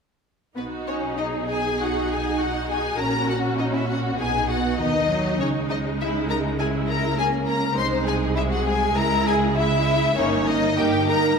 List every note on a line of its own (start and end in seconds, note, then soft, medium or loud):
0.55 2.95 B1 soft
0.55 2.95 B2 soft
0.55 0.63 B3 soft
0.55 1.76 D#4 soft
0.55 1.15 F#4 soft
0.55 0.65 B4 medium
0.87 1.18 C#4 soft
0.87 0.95 C#5 medium
1.18 1.49 D#4 soft
1.18 2.40 G#4 soft
1.18 1.26 D#5 medium
1.48 1.79 G#4 medium
1.48 1.79 G#5 medium
1.80 2.97 D#4 soft
1.80 2.10 F#4 soft
1.80 2.11 F#5 medium
2.08 2.39 G#4 soft
2.08 2.41 G#5 medium
2.37 2.45 F#4 soft
2.37 2.98 F#4 soft
2.37 2.70 F#5 medium
2.67 2.97 G#4 medium
2.67 2.99 G#5 medium
2.97 4.16 A#1 soft
2.97 4.16 A#2 soft
2.97 4.19 C#4 soft
2.97 4.17 F#4 soft
2.97 3.28 A#4 soft
2.97 3.29 A#5 medium
3.27 3.58 F#4 medium
3.27 3.37 F#5 medium
3.58 3.73 D#4 medium
3.58 3.64 D#5 medium
3.73 3.88 E4 soft
3.73 3.88 E5 soft
3.89 4.18 F#4 medium
3.89 3.98 F#5 medium
4.18 4.79 B1 soft
4.18 4.78 B2 soft
4.18 4.78 B3 soft
4.18 6.59 D#4 soft
4.18 4.48 G#4 medium
4.18 4.49 G#5 medium
4.48 4.79 F#4 medium
4.48 4.78 F#5 medium
4.79 5.39 D#2 soft
4.79 5.39 D#3 soft
4.79 5.09 B3 soft
4.79 5.39 D#4 medium
4.79 5.38 D#5 medium
5.09 5.38 F#3 soft
5.39 7.77 C#2 medium
5.39 7.77 C#3 medium
5.39 7.18 G#3 soft
5.39 5.47 C#4 soft
5.39 5.47 C#5 medium
5.69 5.77 D#4 medium
5.69 5.78 D#5 medium
5.99 6.28 E4 medium
5.99 6.09 E5 medium
6.28 6.36 A#4 medium
6.28 6.38 A#5 medium
6.59 7.17 E4 medium
6.59 6.67 G#4 medium
6.59 6.67 G#5 medium
6.88 7.17 A#4 medium
6.88 7.17 A#5 medium
7.17 7.77 A#3 soft
7.17 7.77 C#4 soft
7.17 7.25 G#4 medium
7.17 7.26 G#5 medium
7.46 7.75 A#4 medium
7.46 7.77 A#5 medium
7.75 8.95 C2 medium
7.75 8.95 C3 medium
7.75 8.35 G#3 soft
7.75 8.35 D#4 soft
7.75 8.05 C5 medium
7.75 7.86 C6 medium
8.05 8.36 G#4 medium
8.05 8.15 G#5 medium
8.35 9.53 G#3 medium
8.35 8.41 E4 medium
8.35 8.96 G#4 medium
8.35 8.42 E5 medium
8.50 8.65 F#4 medium
8.50 8.66 F#5 medium
8.65 8.73 G#4 medium
8.65 8.95 G#5 medium
8.95 10.14 C#2 medium
8.95 10.13 C#3 medium
8.95 9.54 E4 medium
8.95 9.25 A#4 medium
8.95 9.26 A#5 medium
9.25 9.55 G#4 medium
9.25 9.35 G#5 medium
9.55 10.15 G#3 medium
9.55 10.14 E4 soft
9.55 10.16 E4 medium
9.55 10.16 E5 medium
10.15 10.69 G1 medium
10.15 10.69 G2 medium
10.15 10.45 A#3 medium
10.15 10.45 C#4 medium
10.15 10.45 D#4 medium
10.15 10.47 C#5 medium
10.46 10.75 A#3 medium
10.46 10.75 D#4 medium
10.46 10.77 D#4 medium
10.46 10.77 D#5 medium
10.76 11.30 G1 medium
10.76 11.30 G2 medium
10.76 11.05 A#3 medium
10.76 11.04 D#4 medium
10.76 11.07 G4 medium
10.76 11.08 G5 medium
11.06 11.36 A#3 medium
11.06 11.36 D#4 medium
11.06 11.37 A#4 medium
11.06 11.37 A#5 medium